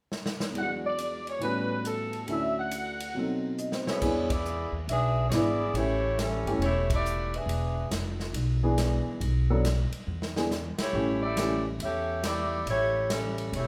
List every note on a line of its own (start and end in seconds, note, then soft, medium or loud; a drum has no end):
0.12 snare medium
0.26 snare medium
0.40 snare medium
0.51 1.40 E2 soft
0.51 1.39 E3 soft
0.55 1.42 G#3 soft
0.55 1.44 D4 soft
0.55 0.71 F#5 medium
0.55 ride soft
0.62 1.43 F#4 soft
0.86 1.25 D5 medium
0.98 hi-hat pedal medium
0.98 ride medium
1.27 1.43 C#5 medium
1.27 ride soft
1.39 2.27 A2 soft
1.39 2.28 E3 soft
1.39 2.28 G3 soft
1.39 2.29 B3 soft
1.39 2.27 C#4 soft
1.39 ride soft
1.43 2.30 F#4 soft
1.43 1.83 B4 medium
1.85 2.26 A4 medium
1.85 hi-hat pedal medium
1.85 ride medium
2.13 ride soft
2.27 3.14 D2 soft
2.27 3.15 D3 soft
2.27 3.15 C#4 soft
2.27 3.16 E4 soft
2.27 2.56 E5 medium
2.27 ride soft
2.31 3.16 F#4 soft
2.59 3.40 F#5 medium
2.71 hi-hat pedal medium
2.71 ride medium
3.00 ride medium
3.14 4.01 B2 soft
3.14 4.02 F#3 soft
3.14 4.02 C4 soft
3.14 4.03 D#4 soft
3.19 4.04 A4 soft
3.58 3.85 D#5 soft
3.58 hi-hat pedal soft
3.72 3.96 C5 soft
3.72 snare soft
3.87 4.28 B3 medium
3.87 4.27 E4 medium
3.87 4.27 G#4 medium
3.87 4.10 B4 soft
3.87 4.27 C#5 medium
3.87 snare medium
4.01 4.69 E2 medium
4.01 4.27 E3 medium
4.01 4.27 B3 soft
4.01 4.27 D4 soft
4.01 4.27 G#4 medium
4.01 kick medium
4.01 crash medium
4.30 4.74 B3 medium
4.30 4.75 E4 medium
4.30 4.74 G#4 medium
4.30 4.74 D5 medium
4.30 kick medium
4.30 ride medium
4.45 hi-hat pedal soft
4.72 4.86 D#2 medium
4.88 5.28 B1 medium
4.88 5.25 D4 medium
4.88 5.25 G#4 medium
4.88 5.25 B4 medium
4.88 5.25 E5 medium
4.88 ride medium
5.29 5.71 G#1 medium
5.29 5.75 B3 medium
5.29 5.32 C#5 medium
5.29 snare medium
5.29 hi-hat pedal medium
5.29 ride medium
5.33 5.58 E3 medium
5.33 5.58 B3 soft
5.33 5.58 D4 soft
5.33 5.74 E4 medium
5.33 5.58 E4 medium
5.33 5.75 G#4 medium
5.33 5.76 D5 medium
5.73 6.42 A1 medium
5.73 6.01 E3 medium
5.73 6.01 A3 soft
5.73 6.19 A3 medium
5.73 6.01 C#4 soft
5.73 6.18 E4 medium
5.73 6.19 G4 medium
5.73 6.01 G4 medium
5.73 6.19 C#5 medium
5.73 ride medium
6.19 6.62 G3 medium
6.19 6.62 C#4 medium
6.19 6.62 E4 medium
6.19 6.62 A4 medium
6.19 snare medium
6.19 hi-hat pedal medium
6.19 ride medium
6.45 6.58 G1 medium
6.45 6.60 E3 medium
6.45 6.61 A3 medium
6.45 6.60 C#4 medium
6.45 6.60 G4 medium
6.45 ride soft
6.59 7.43 E1 medium
6.59 6.88 G4 medium
6.59 6.88 C#5 medium
6.59 ride medium
6.63 6.89 A3 medium
6.63 6.89 E4 medium
6.90 7.32 A3 medium
6.90 7.32 E4 medium
6.90 7.32 G4 medium
6.90 7.32 D5 medium
6.90 kick medium
6.90 ride medium
7.05 hi-hat pedal medium
7.34 7.92 D4 medium
7.34 7.92 G#4 medium
7.34 7.92 B4 medium
7.34 7.92 E5 medium
7.34 ride soft
7.46 7.87 E1 medium
7.46 ride medium
7.91 8.31 F1 medium
7.91 snare medium
7.91 hi-hat pedal medium
7.91 ride medium
8.20 snare soft
8.33 9.01 B1 medium
8.33 ride medium
8.63 9.18 E3 medium
8.63 9.18 B3 medium
8.63 9.18 D4 medium
8.63 9.18 G#4 medium
8.78 snare medium
8.78 hi-hat pedal soft
8.78 ride medium
9.06 muted upright bass stroke soft
9.20 9.88 B1 medium
9.20 ride medium
9.50 9.63 F#3 medium
9.50 9.63 B3 medium
9.50 9.63 D4 medium
9.50 9.63 A4 medium
9.65 snare medium
9.65 hi-hat pedal soft
9.65 ride medium
9.91 muted upright bass stroke soft
9.91 ride soft
10.07 10.75 E2 medium
10.22 snare medium
10.36 10.50 E3 medium
10.36 10.49 B3 soft
10.36 10.49 D4 soft
10.36 10.50 G#4 medium
10.36 snare medium
10.51 snare medium
10.51 hi-hat pedal medium
10.78 11.20 A3 medium
10.78 11.20 E4 medium
10.78 11.20 G4 medium
10.78 11.20 C#5 medium
10.78 muted upright bass stroke soft
10.78 snare medium
10.78 ride medium
10.93 11.76 A1 medium
10.93 11.20 E3 soft
10.93 11.20 A3 soft
10.93 11.20 C#4 soft
10.93 11.20 G4 medium
11.23 11.63 A3 medium
11.23 11.63 E4 medium
11.23 11.63 G4 medium
11.23 11.63 D5 medium
11.37 11.63 E3 soft
11.37 11.63 A3 soft
11.37 11.64 C#4 soft
11.37 11.63 G4 medium
11.37 snare medium
11.37 hi-hat pedal medium
11.37 ride medium
11.79 12.62 E2 medium
11.79 12.22 C#4 medium
11.79 12.22 A4 medium
11.79 12.22 E5 medium
11.79 ride medium
11.83 12.22 G4 medium
12.24 12.66 A3 medium
12.24 12.66 E4 medium
12.24 12.66 G4 medium
12.24 12.65 D5 medium
12.24 snare medium
12.24 hi-hat pedal medium
12.24 ride medium
12.66 13.49 A1 medium
12.66 13.09 E4 medium
12.66 13.09 C#5 medium
12.66 ride medium
12.70 13.09 A3 medium
12.70 13.09 G4 medium
13.10 13.51 G3 medium
13.10 13.51 C#4 medium
13.10 13.51 E4 medium
13.10 13.51 A4 medium
13.10 snare medium
13.10 hi-hat pedal medium
13.10 ride medium
13.38 ride soft
13.52 13.67 E1 medium
13.52 13.67 A3 medium
13.52 13.67 E4 medium
13.52 13.67 G4 medium
13.52 13.67 C#5 medium
13.52 ride medium